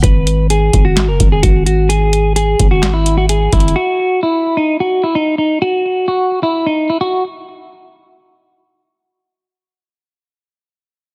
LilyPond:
<<
  \new Staff \with { instrumentName = "Clean electric guitar" } { \time 4/4 \key gis \minor \tempo 4 = 129 b'4 gis'8. fis'8 ais'8 gis'16 fis'8 fis'8 | gis'4 gis'8. fis'8 e'8 fis'16 gis'8 e'8 | fis'4 e'8. dis'8 fis'8 e'16 dis'8 dis'8 | fis'4 fis'8. e'8 dis'8 e'16 fis'8 r8 |
r1 | r1 | }
  \new Staff \with { instrumentName = "808-style bass" } { \clef bass \time 4/4 \key gis \minor gis,,4. gis,,8. fis,,16 gis,,8 gis,,4~ | gis,,4. gis,,2 gis,,8 | r1 | r1 |
r1 | r1 | }
  \new DrumStaff \with { instrumentName = "Drums" } \drummode { \time 4/4 <hh bd>8 hh8 hh8 <hh bd>8 <hc hh sn>8 <hh bd>8 <hh bd>8 hh8 | hh8 hh8 hh8 <hh bd>8 <hc hh sn>8 hh8 \tuplet 3/2 { hh16 r16 r16 <hh bd>16 hh16 hh16 } | r4 r4 r4 r4 | r4 r4 r4 r4 |
r4 r4 r4 r4 | r4 r4 r4 r4 | }
>>